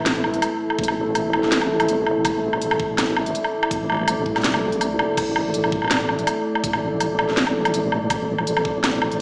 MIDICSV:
0, 0, Header, 1, 5, 480
1, 0, Start_track
1, 0, Key_signature, 0, "minor"
1, 0, Tempo, 365854
1, 1033, Time_signature, 4, 2, 24, 8
1, 12090, End_track
2, 0, Start_track
2, 0, Title_t, "Synth texture"
2, 0, Program_c, 0, 99
2, 6796, Note_on_c, 0, 74, 87
2, 12090, Note_off_c, 0, 74, 0
2, 12090, End_track
3, 0, Start_track
3, 0, Title_t, "Ambient pad"
3, 0, Program_c, 1, 92
3, 0, Note_on_c, 1, 57, 85
3, 0, Note_on_c, 1, 64, 82
3, 0, Note_on_c, 1, 69, 98
3, 2934, Note_off_c, 1, 69, 0
3, 2946, Note_on_c, 1, 74, 102
3, 6776, Note_off_c, 1, 74, 0
3, 6785, Note_on_c, 1, 69, 99
3, 10615, Note_off_c, 1, 69, 0
3, 10637, Note_on_c, 1, 72, 100
3, 12090, Note_off_c, 1, 57, 0
3, 12090, Note_off_c, 1, 64, 0
3, 12090, Note_off_c, 1, 72, 0
3, 12090, End_track
4, 0, Start_track
4, 0, Title_t, "Wobble bass"
4, 0, Program_c, 2, 39
4, 0, Note_on_c, 2, 33, 99
4, 537, Note_off_c, 2, 33, 0
4, 1030, Note_on_c, 2, 33, 93
4, 1622, Note_off_c, 2, 33, 0
4, 1642, Note_on_c, 2, 33, 87
4, 2459, Note_off_c, 2, 33, 0
4, 2473, Note_on_c, 2, 33, 80
4, 2938, Note_off_c, 2, 33, 0
4, 2949, Note_on_c, 2, 33, 99
4, 4376, Note_off_c, 2, 33, 0
4, 4868, Note_on_c, 2, 33, 98
4, 5461, Note_off_c, 2, 33, 0
4, 5478, Note_on_c, 2, 33, 88
4, 5834, Note_on_c, 2, 36, 90
4, 5853, Note_off_c, 2, 33, 0
4, 6550, Note_on_c, 2, 28, 88
4, 6570, Note_off_c, 2, 36, 0
4, 6773, Note_off_c, 2, 28, 0
4, 6787, Note_on_c, 2, 33, 99
4, 8215, Note_off_c, 2, 33, 0
4, 8709, Note_on_c, 2, 33, 96
4, 9301, Note_off_c, 2, 33, 0
4, 9319, Note_on_c, 2, 33, 87
4, 10137, Note_off_c, 2, 33, 0
4, 10151, Note_on_c, 2, 33, 83
4, 10617, Note_off_c, 2, 33, 0
4, 10630, Note_on_c, 2, 33, 98
4, 12056, Note_off_c, 2, 33, 0
4, 12090, End_track
5, 0, Start_track
5, 0, Title_t, "Drums"
5, 77, Note_on_c, 9, 38, 127
5, 77, Note_on_c, 9, 42, 81
5, 208, Note_off_c, 9, 38, 0
5, 208, Note_off_c, 9, 42, 0
5, 315, Note_on_c, 9, 77, 51
5, 441, Note_on_c, 9, 42, 36
5, 446, Note_off_c, 9, 77, 0
5, 553, Note_off_c, 9, 42, 0
5, 553, Note_on_c, 9, 42, 64
5, 553, Note_on_c, 9, 77, 77
5, 684, Note_off_c, 9, 42, 0
5, 684, Note_off_c, 9, 77, 0
5, 920, Note_on_c, 9, 77, 50
5, 1031, Note_on_c, 9, 36, 119
5, 1051, Note_off_c, 9, 77, 0
5, 1096, Note_on_c, 9, 42, 77
5, 1157, Note_on_c, 9, 77, 75
5, 1162, Note_off_c, 9, 36, 0
5, 1227, Note_off_c, 9, 42, 0
5, 1289, Note_off_c, 9, 77, 0
5, 1511, Note_on_c, 9, 42, 67
5, 1511, Note_on_c, 9, 77, 56
5, 1642, Note_off_c, 9, 42, 0
5, 1642, Note_off_c, 9, 77, 0
5, 1750, Note_on_c, 9, 77, 76
5, 1876, Note_on_c, 9, 38, 35
5, 1882, Note_off_c, 9, 77, 0
5, 1990, Note_off_c, 9, 38, 0
5, 1990, Note_on_c, 9, 38, 125
5, 1990, Note_on_c, 9, 42, 80
5, 2119, Note_on_c, 9, 77, 53
5, 2122, Note_off_c, 9, 38, 0
5, 2122, Note_off_c, 9, 42, 0
5, 2251, Note_off_c, 9, 77, 0
5, 2359, Note_on_c, 9, 42, 36
5, 2359, Note_on_c, 9, 77, 81
5, 2473, Note_off_c, 9, 42, 0
5, 2473, Note_on_c, 9, 42, 61
5, 2491, Note_off_c, 9, 77, 0
5, 2604, Note_off_c, 9, 42, 0
5, 2710, Note_on_c, 9, 77, 54
5, 2841, Note_off_c, 9, 77, 0
5, 2948, Note_on_c, 9, 36, 119
5, 2952, Note_on_c, 9, 42, 75
5, 2952, Note_on_c, 9, 77, 80
5, 3079, Note_off_c, 9, 36, 0
5, 3083, Note_off_c, 9, 42, 0
5, 3083, Note_off_c, 9, 77, 0
5, 3320, Note_on_c, 9, 77, 56
5, 3432, Note_on_c, 9, 42, 67
5, 3452, Note_off_c, 9, 77, 0
5, 3558, Note_on_c, 9, 77, 84
5, 3563, Note_off_c, 9, 42, 0
5, 3668, Note_on_c, 9, 36, 106
5, 3689, Note_off_c, 9, 77, 0
5, 3799, Note_off_c, 9, 36, 0
5, 3912, Note_on_c, 9, 38, 122
5, 3912, Note_on_c, 9, 42, 85
5, 3912, Note_on_c, 9, 77, 59
5, 4043, Note_off_c, 9, 38, 0
5, 4043, Note_off_c, 9, 42, 0
5, 4043, Note_off_c, 9, 77, 0
5, 4153, Note_on_c, 9, 77, 78
5, 4281, Note_on_c, 9, 42, 37
5, 4284, Note_off_c, 9, 77, 0
5, 4394, Note_off_c, 9, 42, 0
5, 4394, Note_on_c, 9, 42, 65
5, 4519, Note_on_c, 9, 77, 55
5, 4525, Note_off_c, 9, 42, 0
5, 4651, Note_off_c, 9, 77, 0
5, 4760, Note_on_c, 9, 77, 86
5, 4868, Note_on_c, 9, 36, 114
5, 4871, Note_on_c, 9, 42, 78
5, 4892, Note_off_c, 9, 77, 0
5, 4999, Note_off_c, 9, 36, 0
5, 5002, Note_off_c, 9, 42, 0
5, 5112, Note_on_c, 9, 77, 53
5, 5145, Note_off_c, 9, 77, 0
5, 5145, Note_on_c, 9, 77, 42
5, 5176, Note_off_c, 9, 77, 0
5, 5176, Note_on_c, 9, 77, 34
5, 5207, Note_off_c, 9, 77, 0
5, 5207, Note_on_c, 9, 77, 29
5, 5240, Note_off_c, 9, 77, 0
5, 5240, Note_on_c, 9, 77, 25
5, 5267, Note_off_c, 9, 77, 0
5, 5267, Note_on_c, 9, 77, 20
5, 5292, Note_off_c, 9, 77, 0
5, 5292, Note_on_c, 9, 77, 17
5, 5323, Note_off_c, 9, 77, 0
5, 5323, Note_on_c, 9, 77, 13
5, 5348, Note_off_c, 9, 77, 0
5, 5348, Note_on_c, 9, 42, 68
5, 5348, Note_on_c, 9, 77, 86
5, 5479, Note_off_c, 9, 42, 0
5, 5479, Note_off_c, 9, 77, 0
5, 5588, Note_on_c, 9, 36, 59
5, 5719, Note_off_c, 9, 36, 0
5, 5719, Note_on_c, 9, 38, 35
5, 5719, Note_on_c, 9, 42, 16
5, 5719, Note_on_c, 9, 77, 56
5, 5794, Note_off_c, 9, 42, 0
5, 5794, Note_on_c, 9, 42, 23
5, 5829, Note_off_c, 9, 38, 0
5, 5829, Note_off_c, 9, 42, 0
5, 5829, Note_on_c, 9, 38, 127
5, 5829, Note_on_c, 9, 42, 87
5, 5850, Note_off_c, 9, 77, 0
5, 5873, Note_off_c, 9, 42, 0
5, 5873, Note_on_c, 9, 42, 31
5, 5957, Note_on_c, 9, 77, 85
5, 5960, Note_off_c, 9, 38, 0
5, 6004, Note_off_c, 9, 42, 0
5, 6088, Note_off_c, 9, 77, 0
5, 6197, Note_on_c, 9, 42, 39
5, 6311, Note_off_c, 9, 42, 0
5, 6311, Note_on_c, 9, 42, 68
5, 6311, Note_on_c, 9, 77, 57
5, 6442, Note_off_c, 9, 42, 0
5, 6442, Note_off_c, 9, 77, 0
5, 6550, Note_on_c, 9, 77, 83
5, 6681, Note_off_c, 9, 77, 0
5, 6788, Note_on_c, 9, 36, 125
5, 6792, Note_on_c, 9, 42, 83
5, 6792, Note_on_c, 9, 49, 77
5, 6792, Note_on_c, 9, 77, 56
5, 6919, Note_off_c, 9, 36, 0
5, 6923, Note_off_c, 9, 42, 0
5, 6923, Note_off_c, 9, 49, 0
5, 6923, Note_off_c, 9, 77, 0
5, 7030, Note_on_c, 9, 77, 80
5, 7161, Note_off_c, 9, 77, 0
5, 7268, Note_on_c, 9, 42, 72
5, 7398, Note_on_c, 9, 77, 55
5, 7399, Note_off_c, 9, 42, 0
5, 7508, Note_on_c, 9, 36, 107
5, 7529, Note_off_c, 9, 77, 0
5, 7635, Note_on_c, 9, 77, 37
5, 7639, Note_off_c, 9, 36, 0
5, 7668, Note_off_c, 9, 77, 0
5, 7668, Note_on_c, 9, 77, 43
5, 7710, Note_off_c, 9, 77, 0
5, 7710, Note_on_c, 9, 77, 50
5, 7749, Note_off_c, 9, 77, 0
5, 7749, Note_on_c, 9, 38, 127
5, 7749, Note_on_c, 9, 42, 89
5, 7749, Note_on_c, 9, 77, 61
5, 7792, Note_off_c, 9, 77, 0
5, 7792, Note_on_c, 9, 77, 70
5, 7829, Note_off_c, 9, 77, 0
5, 7829, Note_on_c, 9, 77, 77
5, 7880, Note_off_c, 9, 38, 0
5, 7880, Note_off_c, 9, 42, 0
5, 7960, Note_off_c, 9, 77, 0
5, 7988, Note_on_c, 9, 77, 55
5, 8118, Note_on_c, 9, 42, 38
5, 8119, Note_off_c, 9, 77, 0
5, 8227, Note_off_c, 9, 42, 0
5, 8227, Note_on_c, 9, 42, 71
5, 8227, Note_on_c, 9, 77, 82
5, 8358, Note_off_c, 9, 42, 0
5, 8358, Note_off_c, 9, 77, 0
5, 8598, Note_on_c, 9, 77, 56
5, 8708, Note_on_c, 9, 36, 127
5, 8709, Note_on_c, 9, 42, 82
5, 8730, Note_off_c, 9, 77, 0
5, 8835, Note_on_c, 9, 77, 79
5, 8839, Note_off_c, 9, 36, 0
5, 8840, Note_off_c, 9, 42, 0
5, 8966, Note_off_c, 9, 77, 0
5, 9190, Note_on_c, 9, 42, 75
5, 9190, Note_on_c, 9, 77, 54
5, 9321, Note_off_c, 9, 42, 0
5, 9321, Note_off_c, 9, 77, 0
5, 9431, Note_on_c, 9, 77, 82
5, 9558, Note_on_c, 9, 38, 36
5, 9562, Note_off_c, 9, 77, 0
5, 9669, Note_off_c, 9, 38, 0
5, 9669, Note_on_c, 9, 38, 127
5, 9798, Note_on_c, 9, 77, 56
5, 9800, Note_off_c, 9, 38, 0
5, 9929, Note_off_c, 9, 77, 0
5, 10040, Note_on_c, 9, 42, 39
5, 10040, Note_on_c, 9, 77, 83
5, 10152, Note_off_c, 9, 42, 0
5, 10152, Note_on_c, 9, 42, 70
5, 10171, Note_off_c, 9, 77, 0
5, 10283, Note_off_c, 9, 42, 0
5, 10393, Note_on_c, 9, 77, 55
5, 10524, Note_off_c, 9, 77, 0
5, 10629, Note_on_c, 9, 36, 127
5, 10632, Note_on_c, 9, 42, 81
5, 10632, Note_on_c, 9, 77, 77
5, 10760, Note_off_c, 9, 36, 0
5, 10763, Note_off_c, 9, 42, 0
5, 10763, Note_off_c, 9, 77, 0
5, 11001, Note_on_c, 9, 77, 54
5, 11113, Note_on_c, 9, 42, 70
5, 11132, Note_off_c, 9, 77, 0
5, 11240, Note_on_c, 9, 77, 78
5, 11244, Note_off_c, 9, 42, 0
5, 11349, Note_on_c, 9, 36, 113
5, 11371, Note_off_c, 9, 77, 0
5, 11480, Note_off_c, 9, 36, 0
5, 11593, Note_on_c, 9, 38, 127
5, 11593, Note_on_c, 9, 42, 86
5, 11593, Note_on_c, 9, 77, 54
5, 11725, Note_off_c, 9, 38, 0
5, 11725, Note_off_c, 9, 42, 0
5, 11725, Note_off_c, 9, 77, 0
5, 11830, Note_on_c, 9, 77, 79
5, 11959, Note_on_c, 9, 42, 39
5, 11962, Note_off_c, 9, 77, 0
5, 12090, Note_off_c, 9, 42, 0
5, 12090, End_track
0, 0, End_of_file